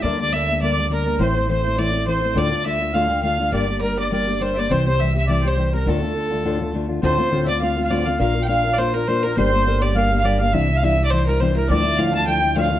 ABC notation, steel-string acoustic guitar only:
X:1
M:4/4
L:1/8
Q:"Swing" 1/4=206
K:Dm
V:1 name="Steel-string acoustic guitar"
[D,G,B,D] [G,B,D] [D,G,B,D] [G,B,D] [D,G,B,D] [G,B,D] [D,G,B,D] [G,B,D] | [A,,E,A,CE] [A,CE] [E,A,CE] [A,CE] [A,,E,A,CE] [A,C] [E,A,CE] [A,CE] | [D,,A,,D,A,DF] [D,A,DF] [D,A,DF] [D,A,DF] [D,,A,,D,A,DF] [D,A,DF] [D,A,DF] [D,A,DF] | [G,B,DG] [B,G] [G,B,DG] [B,DG] [G,B,DG] [B,DG] [G,B,DG] [B,DG] |
[C,E,G,CG] [G,CG] [E,G,CG] [G,CG] [C,E,G,CG] [G,CG] [E,G,CG] [G,CG] | [D,,A,,D,A,DF] [D,A,DF] [D,A,DF] [D,A,DF] [D,,A,,D,A,DF] [D,A,DF] [D,A,DF] [D,A,DF] | [D,,A,,D,A,CF] [D,A,CF] [D,,A,,D,A,CF] [D,A,CF] [D,A,CF] [D,A,CF] [D,,A,,D,A,CF] [D,A,CF] | [B,DFB] [FB] [B,DFB] [DFB] [B,DFB] [DFB] [B,DFB] [DFB] |
[G,B,DG] [B,DG] [G,B,DG] [B,DG] [G,B,DG] [B,DG] [G,B,DG] [B,DG] | [C,E,G,DE] [G,D] [C,E,G,DE] [G,DE] [E,G,DE] [G,DE] [C,E,G,DE] [G,DE] | [D,,A,,F,A,DE] [F,A,E] [D,,A,,F,A,DE] [F,A,DE] [F,A,DE] [F,A,DE] [D,,A,,F,A,DE] [F,A,DE] |]